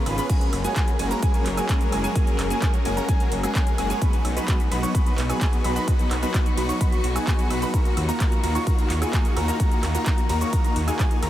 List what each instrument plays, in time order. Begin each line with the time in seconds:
Already playing: string section C#3 G#3 B3 F4
0.06 detuned saw bass G#1, supersaw synth B3 C#4 F4 G#4 B4, grand piano B5, open hi-hat, ride, high woodblock
0.18 supersaw synth B3 C#4 F4 G#4 B4, grand piano B5, closed hi-hat, cabasa
0.29 string section F#3 C#4 G#4 A#4, supersaw synth G#3 A#3 C#4 F#4, grand piano G#5, kick, closed hi-hat, crash, cabasa
0.41 closed hi-hat, cabasa
0.53 detuned saw bass F#1, open hi-hat, ride, high woodblock
0.64 supersaw synth G#3 A#3 C#4 F#4 G#4, grand piano G#5, closed hi-hat, cabasa
0.76 supersaw synth G#3 A#3 G#4, grand piano G#5, kick, clap, closed hi-hat, cabasa
0.88 closed hi-hat, cabasa
0.99 detuned saw bass F#1, supersaw synth G#3 A#3 C#4 F#4 G#4, grand piano G#5, open hi-hat, ride
1.11 supersaw synth G#3 A#3 C#4 F#4 A#4, grand piano A#5, closed hi-hat, cabasa
1.22 supersaw synth G#3 A#3 C#4 F#4, grand piano G#5, kick, closed hi-hat, cabasa
1.34 supersaw synth G#3 A#3 C#4 F#4 G#4, grand piano G#5, closed hi-hat, cabasa
1.46 detuned saw bass F#1, clap, open hi-hat, ride
1.57 supersaw synth G#3 A#3 C#4 F#4 G#4, grand piano G#5, closed hi-hat, cabasa, high woodblock
1.69 supersaw synth G#3 C#4, grand piano G#5, kick, clap, closed hi-hat, cabasa
1.81 closed hi-hat, cabasa
1.92 detuned saw bass F#1, supersaw synth G#3 A#3 C#4 F#4 G#4, grand piano G#5, open hi-hat, ride, high woodblock
2.04 supersaw synth G#3 A#3 C#4 F#4 G#4, grand piano G#5, closed hi-hat, cabasa
2.16 supersaw synth G#3 A#3 C#4 F#4 G#4, grand piano G#5, kick, closed hi-hat, cabasa
2.27 closed hi-hat, cabasa
2.39 detuned saw bass F#1, clap, open hi-hat, ride, high woodblock
2.50 supersaw synth G#3 A#3 C#4 F#4 G#4, grand piano G#5, closed hi-hat, cabasa
2.62 supersaw synth G#3 A#3 C#4 G#4, grand piano G#5, kick, clap, closed hi-hat, cabasa
2.74 closed hi-hat, cabasa
2.85 detuned saw bass F#1, supersaw synth G#3 A#3 C#4 F#4 G#4, grand piano G#5, open hi-hat, ride
2.97 supersaw synth G#3 A#3 C#4 F#4 A#4, grand piano A#5, closed hi-hat, cabasa
3.09 supersaw synth G#3 A#3 C#4 F#4 G#4, grand piano G#5, kick, closed hi-hat, cabasa
3.20 supersaw synth G#3 A#3 C#4 F#4 G#4, grand piano G#5, closed hi-hat, cabasa
3.32 detuned saw bass F#1, open hi-hat, ride
3.43 supersaw synth G#3 A#3 C#4 F#4 G#4, grand piano G#5, closed hi-hat, cabasa, high woodblock
3.55 supersaw synth A#3, grand piano G#5, kick, clap, open hi-hat, cabasa
3.67 closed hi-hat, cabasa
3.78 detuned saw bass F#1, supersaw synth G#3 A#3 C#4 F#4 G#4, grand piano G#5, open hi-hat, ride, high woodblock
3.90 supersaw synth G#3 A#3 C#4 F#4 G#4, grand piano G#5, closed hi-hat, cabasa
4.02 supersaw synth F#3 B3 D#4 F#4 B4, string section B3 D#4 F#4, grand piano B5, kick, closed hi-hat, cabasa
4.13 closed hi-hat, cabasa
4.25 detuned saw bass B1, open hi-hat, ride, high woodblock
4.36 supersaw synth F#3 B3 D#4 F#4 B4, grand piano B5, closed hi-hat, cabasa
4.48 supersaw synth F#3 B3 D#4 F#4 B4, grand piano B5, kick, clap, closed hi-hat, cabasa
4.60 closed hi-hat, cabasa
4.71 detuned saw bass B1, supersaw synth F#3 B3 D#4 F#4 B4, grand piano B5, open hi-hat, ride
4.83 supersaw synth F#3 B3 D#4 F#4 C#5, grand piano C#6, closed hi-hat, cabasa
4.95 supersaw synth B3 D#4 F#4 B4, grand piano B5, kick, closed hi-hat, cabasa
5.06 supersaw synth F#3 B3 D#4 F#4 B4, grand piano B5, closed hi-hat, cabasa
5.18 detuned saw bass B1, clap, open hi-hat, ride
5.29 supersaw synth F#3 B3 D#4 F#4 G#4, grand piano G#5, closed hi-hat, cabasa, high woodblock
5.41 supersaw synth F#3 B3 D#4 F#4 G#4, grand piano G#5, kick, clap, closed hi-hat, cabasa
5.53 closed hi-hat, cabasa
5.64 detuned saw bass B1, supersaw synth F#3 B3 D#4 F#4 B4, grand piano B5, open hi-hat, ride, high woodblock
5.76 supersaw synth F#3 B3 D#4 F#4 B4, grand piano B5, closed hi-hat, cabasa
5.87 grand piano B5, kick, closed hi-hat, cabasa
5.99 closed hi-hat, cabasa
6.11 detuned saw bass B1, clap, open hi-hat, ride, high woodblock
6.22 supersaw synth F#3 B3 D#4 F#4 B4, grand piano B5, closed hi-hat, cabasa
6.34 supersaw synth F#3 B3 D#4 F#4, grand piano B5, kick, clap, closed hi-hat, cabasa
6.46 closed hi-hat, cabasa
6.57 detuned saw bass B1, supersaw synth F#3 B3 D#4 F#4 B4, grand piano B5, open hi-hat, ride
6.69 supersaw synth F#3 B3 D#4 F#4 C#5, grand piano C#6, closed hi-hat, cabasa
6.80 supersaw synth F#3 B3 D#4 F#4 B4, grand piano B5, kick, closed hi-hat, cabasa
6.92 supersaw synth F#3 B3 D#4 F#4 B4, grand piano B5, closed hi-hat, cabasa
7.04 detuned saw bass B1, open hi-hat, ride
7.15 supersaw synth F#3 B3 D#4 F#4 G#4, grand piano G#5, closed hi-hat, cabasa, high woodblock
7.27 supersaw synth B3, grand piano G#5, kick, clap, open hi-hat, cabasa
7.39 closed hi-hat, cabasa
7.50 detuned saw bass B1, supersaw synth F#3 B3 D#4 F#4 B4, grand piano B5, open hi-hat, ride, high woodblock
7.62 supersaw synth F#3 B3 D#4 F#4 B4, grand piano B5, closed hi-hat, cabasa
7.74 string section D#3 A#3 F4, supersaw synth A#3 F#4, grand piano A#5, kick, closed hi-hat, cabasa
7.85 closed hi-hat, cabasa
7.97 detuned saw bass D#2, open hi-hat, ride, high woodblock
8.09 supersaw synth A#3 D#4 F4 F#4 A#4, grand piano A#5, closed hi-hat, cabasa
8.20 supersaw synth F4 F#4, grand piano A#5, kick, clap, closed hi-hat, cabasa
8.32 closed hi-hat, cabasa
8.43 detuned saw bass D#2, supersaw synth A#3 D#4 F4 F#4 A#4, grand piano A#5, open hi-hat, ride
8.55 supersaw synth A#3 D#4 F4 F#4 C#5, grand piano C#6, closed hi-hat, cabasa
8.67 supersaw synth A#3 A#4, grand piano A#5, kick, closed hi-hat, cabasa
8.78 supersaw synth A#3 D#4 F4 F#4 A#4, grand piano A#5, closed hi-hat, cabasa
8.90 detuned saw bass D#2, clap, open hi-hat, ride
9.02 supersaw synth A#3 D#4 F4 F#4 G#4, grand piano G#5, closed hi-hat, cabasa, high woodblock
9.13 supersaw synth A#3 D#4 F4 G#4, grand piano G#5, kick, clap, closed hi-hat, cabasa
9.25 closed hi-hat, cabasa
9.36 detuned saw bass D#2, supersaw synth A#3 D#4 F4 F#4 A#4, grand piano A#5, open hi-hat, ride, high woodblock
9.48 supersaw synth A#3 D#4 F4 F#4 A#4, grand piano A#5, closed hi-hat, cabasa
9.60 string section D#4, supersaw synth A#4, kick, closed hi-hat, cabasa
9.71 closed hi-hat, cabasa
9.83 detuned saw bass D#2, clap, open hi-hat, ride, high woodblock
9.95 supersaw synth A#3 D#4 F4 F#4 A#4, grand piano A#5, closed hi-hat, cabasa
10.06 kick, clap, closed hi-hat, cabasa
10.18 closed hi-hat, cabasa
10.29 detuned saw bass D#2, supersaw synth A#3 D#4 F4 F#4 A#4, grand piano A#5, open hi-hat, ride
10.41 supersaw synth A#3 D#4 F4 F#4 C#5, grand piano C#6, closed hi-hat, cabasa
10.53 supersaw synth A#3 D#4 F4 F#4 A#4, grand piano A#5, kick, closed hi-hat, cabasa
10.64 supersaw synth A#3 D#4 F4 F#4 A#4, grand piano A#5, closed hi-hat, cabasa
10.76 detuned saw bass D#2, open hi-hat, ride
10.88 supersaw synth A#3 D#4 F4 F#4 G#4, grand piano G#5, closed hi-hat, cabasa, high woodblock
10.99 supersaw synth F4, grand piano G#5, kick, clap, open hi-hat, cabasa
11.11 closed hi-hat, cabasa
11.22 detuned saw bass D#2, supersaw synth A#3 D#4 F4 F#4 A#4, grand piano A#5, open hi-hat, ride, high woodblock